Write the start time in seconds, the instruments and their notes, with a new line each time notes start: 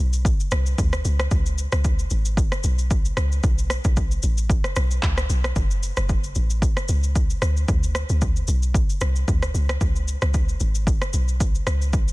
0.00 log drum bass B1
0.13 shaker
0.25 kick, shaker
0.40 shaker
0.51 log drum bass C2, cross-stick, shaker
0.66 shaker
0.78 log drum bass D2, kick, shaker
0.93 cross-stick, shaker
1.05 log drum bass C#2, shaker
1.20 cross-stick, shaker
1.31 log drum bass C#2, kick, shaker
1.46 shaker
1.58 shaker
1.72 log drum bass C#2, cross-stick, shaker
1.84 kick, shaker
1.99 shaker
2.10 log drum bass G#1, shaker
2.25 shaker
2.37 kick, shaker
2.52 cross-stick, shaker
2.64 log drum bass B1, shaker
2.79 shaker
2.91 kick, shaker
3.05 shaker
3.17 log drum bass C#2, cross-stick, shaker
3.32 shaker
3.43 log drum bass B1, kick, shaker
3.58 shaker
3.70 cross-stick, shaker
3.84 log drum bass B1, kick, shaker
3.97 kick, shaker
4.11 shaker
4.23 log drum bass A1, shaker
4.38 shaker
4.50 kick, shaker
4.64 cross-stick, shaker
4.76 log drum bass B1, cross-stick, shaker
4.91 shaker
5.03 log drum bass C#2, kick, clap, shaker
5.18 cross-stick, shaker
5.30 log drum bass B1, shaker
5.44 cross-stick, shaker
5.56 log drum bass F#1, kick, shaker
5.71 shaker
5.83 shaker
5.97 log drum bass F#1, cross-stick, shaker
6.09 kick, shaker
6.24 shaker
6.35 log drum bass A1, shaker
6.50 shaker
6.62 kick, shaker
6.77 cross-stick, shaker
6.88 log drum bass C#2, shaker
7.03 shaker
7.16 kick, shaker
7.30 shaker
7.42 log drum bass D2, cross-stick, shaker
7.57 shaker
7.68 log drum bass D2, kick, shaker
7.83 shaker
7.95 cross-stick, shaker
8.09 log drum bass D2, shaker
8.22 kick, shaker
8.36 shaker
8.48 log drum bass B1, shaker
8.63 shaker
8.74 kick, shaker
8.90 shaker
9.01 log drum bass C2, cross-stick, shaker
9.16 shaker
9.28 log drum bass D2, kick, shaker
9.43 cross-stick, shaker
9.54 log drum bass C#2, shaker
9.69 cross-stick, shaker
9.81 log drum bass C#2, kick, shaker
9.96 shaker
10.08 shaker
10.22 log drum bass C#2, cross-stick, shaker
10.34 kick, shaker
10.49 shaker
10.60 log drum bass G#1, shaker
10.75 shaker
10.87 kick, shaker
11.02 cross-stick, shaker
11.13 log drum bass B1, shaker
11.28 shaker
11.40 kick, shaker
11.55 shaker
11.67 log drum bass C#2, cross-stick, shaker
11.82 shaker
11.93 log drum bass B1, kick, shaker
12.08 shaker